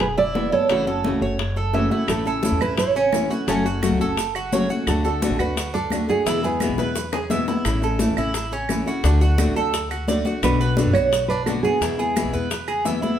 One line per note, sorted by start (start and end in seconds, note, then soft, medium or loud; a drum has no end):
0.00 0.48 E1 medium
0.00 0.17 G#4 medium
0.00 0.06 B4 medium
0.00 muted nylon-string guitar stroke medium
0.00 high bongo medium
0.00 high conga soft
0.18 0.51 E4 medium
0.18 0.50 D5 loud
0.18 high bongo soft
0.18 high conga soft
0.34 0.51 B2 medium
0.34 0.51 E3 medium
0.34 0.52 G#3 medium
0.34 0.52 B3 medium
0.34 0.51 E4 medium
0.34 high bongo soft
0.34 low bongo medium
0.34 high conga medium
0.52 0.70 G#3 soft
0.52 0.69 B3 soft
0.52 0.69 E4 soft
0.52 0.69 A4 medium
0.52 1.88 C#5 medium
0.52 high bongo soft
0.52 high conga soft
0.69 1.11 F#1 medium
0.69 0.86 C#3 medium
0.69 0.86 E3 medium
0.69 0.86 A3 medium
0.69 0.87 C#4 medium
0.69 0.87 E4 medium
0.69 0.86 F#4 medium
0.69 high bongo medium
0.69 high conga soft
0.87 1.04 A3 soft
0.87 1.04 C#4 soft
0.87 1.04 F#4 soft
0.87 1.21 A4 medium
0.87 high bongo soft
0.87 high conga soft
1.04 1.21 C#3 medium
1.04 1.22 E3 medium
1.04 1.21 A3 medium
1.04 1.22 C#4 medium
1.04 1.20 F#4 medium
1.04 high bongo medium
1.04 high conga medium
1.12 1.21 C#2 medium
1.21 1.88 F#1 medium
1.21 1.39 A3 soft
1.21 1.38 C#4 soft
1.21 1.38 F#4 soft
1.21 1.56 C#5 medium
1.39 muted nylon-string guitar stroke medium
1.39 high bongo medium
1.39 high conga soft
1.56 1.74 A4 medium
1.56 high bongo soft
1.56 high conga soft
1.74 1.91 C#3 medium
1.74 1.91 E3 medium
1.74 1.91 A3 medium
1.74 1.90 C#4 medium
1.74 1.89 F#4 medium
1.74 1.91 E5 medium
1.74 high bongo soft
1.74 low bongo medium
1.74 high conga medium
1.91 2.07 A3 soft
1.91 2.08 C#4 soft
1.91 2.25 E4 medium
1.91 2.08 F#4 soft
1.91 high bongo soft
1.91 high conga medium
2.07 2.50 A1 medium
2.07 2.25 E3 medium
2.07 2.25 A3 medium
2.07 2.25 C#4 medium
2.07 2.24 E4 medium
2.07 2.61 A4 medium
2.07 high bongo medium
2.07 high conga soft
2.07 claves medium
2.07 maracas medium
2.26 2.42 A3 soft
2.26 2.43 C#4 soft
2.26 2.43 E4 soft
2.26 2.60 A4 medium
2.26 high bongo soft
2.26 high conga soft
2.26 maracas soft
2.43 2.60 E3 medium
2.43 2.60 A3 medium
2.43 2.60 C#4 medium
2.43 2.60 E4 medium
2.43 high bongo medium
2.43 high conga medium
2.43 maracas medium
2.51 2.59 E2 medium
2.60 3.27 A1 medium
2.60 2.77 A3 soft
2.60 2.77 C#4 soft
2.60 2.77 E4 soft
2.60 2.95 E4 medium
2.60 2.78 B4 medium
2.60 high conga soft
2.60 claves medium
2.60 maracas soft
2.77 3.27 C#5 loud
2.77 muted nylon-string guitar stroke medium
2.77 high bongo medium
2.77 maracas medium
2.95 3.30 C#4 medium
2.95 high bongo soft
2.95 high conga soft
2.95 maracas soft
3.12 3.29 E3 medium
3.12 3.30 A3 medium
3.12 3.30 C#4 medium
3.12 3.29 E4 medium
3.12 high bongo soft
3.12 low bongo medium
3.12 high conga medium
3.12 claves medium
3.12 maracas medium
3.27 3.47 E4 soft
3.27 3.47 F#4 medium
3.27 3.44 B4 loud
3.27 high bongo soft
3.27 high conga soft
3.31 3.48 A3 soft
3.31 3.48 C#4 soft
3.31 maracas soft
3.47 3.89 F#1 loud
3.47 3.65 C#3 medium
3.47 3.65 F#3 medium
3.47 3.65 A3 medium
3.47 3.65 C#4 medium
3.47 3.64 F#4 medium
3.47 4.66 A4 medium
3.47 high bongo medium
3.47 maracas medium
3.65 3.81 A3 soft
3.65 3.82 C#4 soft
3.65 3.82 F#4 soft
3.65 3.99 F#4 medium
3.65 high bongo soft
3.65 maracas soft
3.82 3.99 C#3 medium
3.82 3.99 F#3 medium
3.82 3.99 A3 medium
3.82 4.00 C#4 medium
3.82 3.99 F#4 medium
3.82 high bongo medium
3.82 high conga medium
3.82 claves medium
3.82 maracas medium
3.91 3.99 C#2 medium
3.99 4.66 F#1 medium
3.99 4.17 A3 soft
3.99 4.17 C#4 soft
3.99 4.17 F#4 soft
3.99 4.34 A4 medium
3.99 maracas soft
4.17 muted nylon-string guitar stroke medium
4.17 high bongo medium
4.17 high conga soft
4.17 maracas medium
4.35 4.52 F#4 medium
4.35 high bongo soft
4.35 high conga soft
4.35 claves medium
4.35 maracas soft
4.52 4.69 C#3 medium
4.52 4.69 F#3 medium
4.52 4.69 A3 medium
4.52 4.70 C#4 medium
4.52 4.68 F#4 medium
4.52 4.70 C#5 medium
4.52 high bongo soft
4.52 low bongo medium
4.52 high conga medium
4.52 maracas medium
4.69 4.87 A3 soft
4.69 4.87 C#4 soft
4.69 4.86 F#4 soft
4.69 5.04 F#4 medium
4.69 high bongo soft
4.69 high conga medium
4.69 maracas soft
4.87 5.28 D2 loud
4.87 5.04 D3 medium
4.87 5.04 A3 medium
4.87 5.05 D4 medium
4.87 5.04 F#4 medium
4.87 5.40 A4 medium
4.87 high bongo medium
4.87 high conga soft
4.87 claves medium
4.87 maracas medium
5.05 5.21 A3 soft
5.05 5.22 D4 soft
5.05 5.21 F#4 soft
5.05 5.38 A4 medium
5.05 high bongo soft
5.05 high conga soft
5.05 maracas soft
5.22 5.39 D3 medium
5.22 5.39 A3 medium
5.22 5.39 D4 medium
5.22 5.38 F#4 medium
5.22 high bongo medium
5.22 high conga medium
5.22 maracas medium
5.30 5.39 A1 medium
5.39 6.05 D2 medium
5.39 5.56 A3 soft
5.39 5.56 D4 soft
5.39 5.56 F#4 soft
5.39 5.73 F#4 medium
5.39 5.74 B4 medium
5.39 high conga soft
5.39 claves medium
5.39 maracas soft
5.57 muted nylon-string guitar stroke medium
5.57 high bongo medium
5.57 high conga soft
5.57 maracas medium
5.74 6.08 D4 medium
5.74 6.09 A4 medium
5.74 high bongo soft
5.74 high conga soft
5.74 maracas soft
5.90 6.08 D3 medium
5.90 6.08 A3 medium
5.90 6.09 D4 medium
5.90 6.08 F#4 medium
5.90 high bongo soft
5.90 low bongo medium
5.90 high conga medium
5.90 claves medium
5.90 maracas medium
6.08 6.26 A3 soft
6.08 6.26 D4 soft
6.08 6.26 F#4 soft
6.08 6.26 G#4 medium
6.08 6.42 G#4 medium
6.08 high bongo soft
6.08 high conga soft
6.08 maracas soft
6.26 6.67 E2 loud
6.26 6.43 B2 medium
6.26 6.43 E3 medium
6.26 6.43 G#3 medium
6.26 6.43 B3 medium
6.26 6.43 E4 medium
6.26 6.42 E4 medium
6.26 high bongo medium
6.26 high conga soft
6.26 maracas medium
6.43 6.61 G#3 soft
6.43 6.60 B3 soft
6.43 6.60 E4 soft
6.43 6.78 G#4 medium
6.43 6.77 B4 medium
6.43 high bongo soft
6.43 high conga soft
6.43 maracas soft
6.60 6.78 B2 medium
6.60 6.78 E3 medium
6.60 6.78 G#3 medium
6.60 6.78 B3 medium
6.60 6.77 E4 medium
6.60 high bongo medium
6.60 high conga medium
6.60 claves medium
6.60 maracas medium
6.69 6.78 B1 medium
6.78 7.44 E2 medium
6.78 6.95 G#3 soft
6.78 6.95 B3 soft
6.78 6.95 E4 soft
6.78 7.12 B4 medium
6.78 high bongo medium
6.78 maracas soft
6.95 muted nylon-string guitar stroke medium
6.95 high bongo medium
6.95 high conga soft
6.95 maracas medium
7.13 7.30 G#4 medium
7.13 low bongo medium
7.13 high conga soft
7.13 claves medium
7.13 maracas soft
7.30 7.47 B2 medium
7.30 7.47 E3 medium
7.30 7.48 G#3 medium
7.30 7.47 B3 medium
7.30 7.47 E4 medium
7.30 7.47 E5 medium
7.30 low bongo medium
7.30 high conga medium
7.30 maracas medium
7.48 7.65 G#3 soft
7.48 7.65 B3 soft
7.48 7.64 E4 soft
7.48 7.82 E4 medium
7.48 low bongo medium
7.48 high conga medium
7.48 maracas soft
7.65 8.06 A1 loud
7.65 7.82 E3 medium
7.65 7.82 A3 medium
7.65 7.82 C#4 medium
7.65 7.81 E4 medium
7.65 high bongo medium
7.65 high conga soft
7.65 claves medium
7.65 maracas medium
7.82 7.99 A3 soft
7.82 8.00 C#4 soft
7.82 7.99 E4 soft
7.82 8.17 A4 medium
7.82 high bongo soft
7.82 high conga soft
7.82 maracas soft
7.99 8.17 E3 medium
7.99 8.17 A3 medium
7.99 8.17 C#4 medium
7.99 8.15 E4 medium
7.99 high bongo medium
7.99 high conga medium
7.99 maracas medium
8.08 8.16 E2 medium
8.17 8.83 A1 medium
8.17 8.34 A3 soft
8.17 8.34 C#4 soft
8.17 8.34 E4 soft
8.17 8.51 E4 medium
8.17 high conga soft
8.17 claves medium
8.17 maracas soft
8.34 muted nylon-string guitar stroke soft
8.34 high bongo medium
8.34 high conga soft
8.34 maracas medium
8.52 8.86 C#4 medium
8.52 high bongo soft
8.52 high conga soft
8.52 maracas soft
8.69 8.86 E3 medium
8.69 8.86 A3 medium
8.69 8.86 C#4 medium
8.69 8.85 E4 medium
8.69 high bongo soft
8.69 low bongo medium
8.69 high conga medium
8.69 claves medium
8.69 maracas medium
8.86 9.03 A3 soft
8.86 9.04 C#4 soft
8.86 9.03 E4 soft
8.86 9.04 F#4 medium
8.86 high bongo soft
8.86 high conga soft
8.86 maracas soft
9.04 9.45 D2 loud
9.04 9.21 D3 medium
9.04 9.21 A3 medium
9.04 9.21 D4 medium
9.04 9.20 F#4 medium
9.04 high bongo medium
9.04 high conga soft
9.04 maracas medium
9.21 9.38 A3 soft
9.21 9.38 D4 soft
9.21 9.55 F#4 medium
9.21 9.38 F#4 soft
9.21 high bongo soft
9.21 high conga soft
9.21 maracas soft
9.38 9.55 D3 medium
9.38 9.56 A3 medium
9.38 9.56 D4 medium
9.38 9.55 F#4 medium
9.38 high bongo medium
9.38 high conga medium
9.38 claves medium
9.38 maracas medium
9.47 9.55 A1 medium
9.56 10.22 D2 medium
9.56 9.73 A3 soft
9.56 9.73 D4 soft
9.56 9.73 F#4 soft
9.56 9.90 A4 medium
9.56 maracas soft
9.73 muted nylon-string guitar stroke medium
9.73 high bongo medium
9.73 high conga soft
9.73 maracas medium
9.91 10.08 F#4 medium
9.91 high bongo soft
9.91 high conga soft
9.91 claves medium
9.91 maracas soft
10.08 10.25 D3 medium
10.08 10.25 A3 medium
10.08 10.25 D4 medium
10.08 10.24 F#4 medium
10.08 10.25 D5 medium
10.08 high bongo soft
10.08 low bongo medium
10.08 high conga medium
10.08 maracas medium
10.25 10.43 A3 soft
10.25 10.43 D4 soft
10.25 10.59 F#4 medium
10.25 10.42 F#4 soft
10.25 high bongo soft
10.25 high conga medium
10.25 maracas soft
10.42 10.84 B1 loud
10.42 10.59 B2 medium
10.42 10.60 D3 medium
10.42 10.60 B3 medium
10.42 10.60 D4 medium
10.42 10.59 F#4 medium
10.42 10.92 B4 medium
10.42 high bongo medium
10.42 high conga soft
10.42 claves medium
10.42 maracas medium
10.60 10.77 B3 soft
10.60 10.77 D4 soft
10.60 10.77 F#4 soft
10.60 10.94 B4 medium
10.60 high bongo soft
10.60 high conga soft
10.60 maracas soft
10.77 10.94 B2 medium
10.77 10.94 D3 medium
10.77 10.94 B3 medium
10.77 10.93 D4 medium
10.77 10.92 F#4 medium
10.77 high bongo medium
10.77 high conga medium
10.77 maracas medium
10.86 10.94 F#2 medium
10.93 11.60 B1 medium
10.93 11.11 B3 soft
10.93 11.11 D4 soft
10.93 11.11 F#4 soft
10.93 11.28 F#4 medium
10.93 11.26 C#5 loud
10.93 high conga soft
10.93 claves medium
10.93 maracas soft
11.11 muted nylon-string guitar stroke medium
11.11 high bongo medium
11.11 high conga soft
11.11 maracas medium
11.28 11.63 D4 medium
11.28 11.45 B4 medium
11.28 high bongo soft
11.28 high conga soft
11.28 maracas soft
11.46 11.63 B2 medium
11.46 11.63 D3 medium
11.46 11.64 B3 medium
11.46 11.64 D4 medium
11.46 11.63 F#4 medium
11.46 11.51 A4 medium
11.46 high bongo soft
11.46 low bongo medium
11.46 high conga medium
11.46 claves medium
11.46 maracas medium
11.63 11.81 B3 soft
11.63 11.81 D4 soft
11.63 11.81 F#4 soft
11.63 12.80 G#4 medium
11.63 11.81 G#4 medium
11.63 high bongo soft
11.63 high conga soft
11.63 maracas soft
11.81 12.22 E2 loud
11.81 11.98 B2 medium
11.81 11.98 E3 medium
11.81 11.98 G#3 medium
11.81 11.98 B3 medium
11.81 11.99 E4 medium
11.81 11.97 E4 medium
11.81 high bongo medium
11.81 high conga soft
11.81 maracas medium
11.98 12.15 G#3 soft
11.98 12.15 B3 soft
11.98 12.15 E4 soft
11.98 12.32 G#4 medium
11.98 high bongo soft
11.98 high conga soft
11.98 maracas soft
12.16 12.32 B2 medium
12.16 12.32 E3 medium
12.16 12.33 G#3 medium
12.16 12.33 B3 medium
12.16 12.32 E4 medium
12.16 high bongo medium
12.16 high conga medium
12.16 claves medium
12.16 maracas medium
12.24 12.32 B1 medium
12.33 12.98 E2 medium
12.33 12.50 G#3 soft
12.33 12.50 B3 soft
12.33 12.50 E4 soft
12.33 12.67 B4 medium
12.33 maracas soft
12.50 muted nylon-string guitar stroke medium
12.50 high bongo medium
12.50 high conga soft
12.50 maracas medium
12.68 12.84 G#4 medium
12.68 high bongo soft
12.68 high conga soft
12.68 claves medium
12.68 maracas soft
12.85 13.01 B2 medium
12.85 13.02 E3 medium
12.85 13.02 G#3 medium
12.85 13.02 B3 medium
12.85 13.01 E4 medium
12.85 13.02 E5 medium
12.85 high bongo soft
12.85 low bongo medium
12.85 high conga medium
12.85 maracas medium
13.02 13.19 G#3 soft
13.02 13.19 B3 soft
13.02 13.19 E4 medium
13.02 13.19 E4 soft
13.02 high bongo soft
13.02 high conga medium
13.02 maracas soft